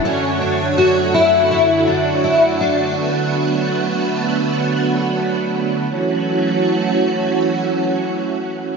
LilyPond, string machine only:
\new Staff \with { instrumentName = "String machine" } { \time 4/4 \key fis \minor \tempo 4 = 82 << { <d fis fis'>1~ | <d fis fis'>1 | <e fis a cis' fis'>1 | } \\ { <fis, a cis''>1 | <a b>1 | r1 | } >> }